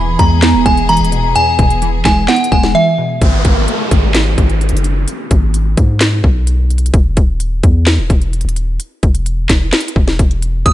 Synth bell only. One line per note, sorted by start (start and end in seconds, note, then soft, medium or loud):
0.00 0.15 B5 loud
0.19 0.63 A#5 medium
0.66 0.85 G#5 medium
0.89 1.33 A#5 medium
1.36 2.01 G#5 loud
2.05 2.24 G#5 medium
2.29 2.48 F#5 loud
2.52 2.71 G#5 medium
2.75 3.19 E5 medium
10.66 10.73 D#6 medium